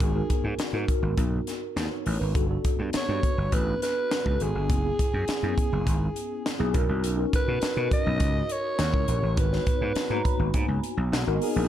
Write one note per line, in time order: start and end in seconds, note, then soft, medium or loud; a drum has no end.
0.00 0.22 G#1 loud
0.00 0.10 B3 medium
0.00 0.10 D#4 medium
0.00 0.10 F#4 medium
0.00 0.56 G#4 medium
0.00 0.10 A#4 medium
0.00 kick loud
0.00 closed hi-hat medium
0.14 0.53 B3 medium
0.14 0.53 D#4 medium
0.14 0.53 F#4 medium
0.14 0.53 A#4 medium
0.30 kick medium
0.30 closed hi-hat medium
0.44 0.55 G#2 medium
0.58 muted slap bass stroke soft
0.58 snare loud
0.58 closed hi-hat medium
0.73 0.84 G#2 medium
0.73 1.49 B3 medium
0.73 1.49 D#4 medium
0.73 1.50 F#4 medium
0.73 1.50 A#4 medium
0.88 kick medium
0.88 closed hi-hat medium
1.02 1.13 G#1 medium
1.17 1.39 B1 loud
1.17 kick medium
1.17 closed hi-hat medium
1.47 snare soft
1.47 closed hi-hat medium
1.76 1.87 D#2 medium
1.76 1.91 D#4 medium
1.76 1.91 B4 medium
1.76 snare loud
1.76 closed hi-hat medium
1.91 2.19 C#5 medium
2.06 2.17 A1 medium
2.06 open hi-hat medium
2.20 2.35 G#1 medium
2.20 2.48 D#4 soft
2.20 2.48 B4 medium
2.34 2.56 G1 loud
2.34 2.44 B3 medium
2.34 2.44 D4 medium
2.34 2.45 F#4 medium
2.34 2.45 A4 medium
2.34 kick loud
2.34 closed hi-hat medium
2.49 2.87 B3 medium
2.49 2.87 D4 medium
2.49 2.88 F#4 medium
2.49 2.88 A4 medium
2.65 kick medium
2.65 closed hi-hat medium
2.79 2.90 G2 medium
2.93 muted slap bass stroke soft
2.93 snare loud
2.93 closed hi-hat medium
2.97 3.56 C#5 loud
3.07 3.19 G2 medium
3.07 3.83 B3 medium
3.07 3.83 D4 medium
3.07 3.84 F#4 medium
3.07 3.84 B4 medium
3.23 kick medium
3.23 closed hi-hat medium
3.38 3.48 G1 medium
3.52 3.73 A1 medium
3.52 3.82 B4 loud
3.52 kick medium
3.52 closed hi-hat medium
3.82 4.44 B4 loud
3.82 snare soft
3.82 closed hi-hat medium
4.11 snare loud
4.11 closed hi-hat medium
4.24 4.36 C#2 medium
4.24 4.53 B3 medium
4.24 4.53 D4 medium
4.24 4.53 F#4 medium
4.24 4.54 A4 medium
4.24 kick medium
4.40 4.51 G#1 medium
4.40 6.75 G#4 medium
4.40 closed hi-hat medium
4.55 4.70 G1 medium
4.69 4.91 F#1 loud
4.69 4.78 B3 medium
4.69 4.79 C#4 medium
4.69 4.79 E4 medium
4.69 4.79 G#4 medium
4.69 kick loud
4.69 closed hi-hat medium
4.84 5.22 B3 medium
4.84 5.22 C#4 medium
4.84 5.22 E4 medium
4.84 5.22 G#4 medium
4.99 kick medium
4.99 closed hi-hat medium
5.14 5.24 F#2 medium
5.28 muted slap bass stroke soft
5.28 snare medium
5.28 closed hi-hat medium
5.42 5.53 F#2 medium
5.42 6.18 B3 medium
5.42 6.18 C#4 medium
5.42 6.18 E4 medium
5.42 6.18 G#4 medium
5.58 kick medium
5.58 closed hi-hat medium
5.73 5.83 F#1 medium
5.87 6.08 G#1 medium
5.87 kick medium
5.87 closed hi-hat medium
6.16 closed hi-hat medium
6.46 snare loud
6.46 closed hi-hat medium
6.58 6.70 B1 medium
6.58 6.74 B3 medium
6.58 6.72 C#4 medium
6.58 6.74 E4 medium
6.58 6.74 G#4 loud
6.73 6.85 B1 medium
6.73 7.09 C#4 medium
6.73 7.09 D#4 medium
6.73 7.09 F#4 medium
6.73 7.09 A#4 loud
6.73 kick loud
6.73 closed hi-hat medium
6.89 7.03 C2 medium
7.03 7.24 B1 loud
7.03 closed hi-hat medium
7.17 7.55 C#4 medium
7.17 7.55 D#4 medium
7.17 7.55 F#4 medium
7.17 7.56 A#4 medium
7.33 7.89 B4 medium
7.33 kick medium
7.33 closed hi-hat medium
7.48 7.58 B2 medium
7.62 muted slap bass stroke soft
7.62 snare medium
7.62 closed hi-hat medium
7.76 7.87 B2 medium
7.76 8.51 C#4 medium
7.76 8.52 D#4 medium
7.76 8.52 F#4 medium
7.76 8.52 A#4 medium
7.91 8.54 D#5 loud
7.91 kick medium
7.91 closed hi-hat medium
8.06 8.20 B1 medium
8.20 8.41 C#2 loud
8.20 kick medium
8.20 closed hi-hat medium
8.49 9.39 C#5 loud
8.49 closed hi-hat medium
8.79 8.93 D#2 medium
8.79 snare medium
8.79 closed hi-hat medium
8.92 9.04 C#2 medium
8.92 9.21 C#4 medium
8.92 9.21 E4 medium
8.92 9.21 G4 medium
8.92 9.22 A#4 medium
8.92 kick medium
9.08 9.19 A#1 medium
9.08 closed hi-hat medium
9.23 9.37 A1 medium
9.36 9.58 G#1 loud
9.36 9.46 B3 medium
9.36 9.46 D#4 medium
9.36 9.47 F#4 medium
9.36 9.47 A#4 medium
9.36 10.51 B4 medium
9.36 kick loud
9.36 closed hi-hat loud
9.51 9.89 B3 medium
9.51 9.89 D#4 medium
9.51 9.89 F#4 medium
9.51 9.90 C#5 medium
9.51 snare soft
9.67 kick medium
9.67 closed hi-hat medium
9.81 9.92 G#2 medium
9.95 muted slap bass stroke soft
9.95 snare loud
9.95 closed hi-hat medium
10.09 10.21 G#2 medium
10.09 10.16 A#3 medium
10.09 10.85 D#4 medium
10.09 10.85 F#4 medium
10.09 10.86 A#5 loud
10.16 10.88 B3 medium
10.25 10.52 B5 medium
10.25 kick medium
10.25 closed hi-hat medium
10.39 10.50 G#1 medium
10.54 10.65 G#2 loud
10.54 11.09 G#5 medium
10.54 kick medium
10.54 closed hi-hat medium
10.68 10.79 C#2 medium
10.83 closed hi-hat medium
10.97 11.08 B1 medium
11.12 11.23 B1 loud
11.12 11.26 F#5 medium
11.12 snare loud
11.12 closed hi-hat medium
11.27 11.38 G#1 medium
11.27 11.55 B3 loud
11.27 11.55 D#4 medium
11.27 11.56 F#4 medium
11.27 11.56 A#4 loud
11.27 11.68 D#5 medium
11.42 11.68 G#4 medium
11.42 open hi-hat medium
11.56 11.67 A#1 medium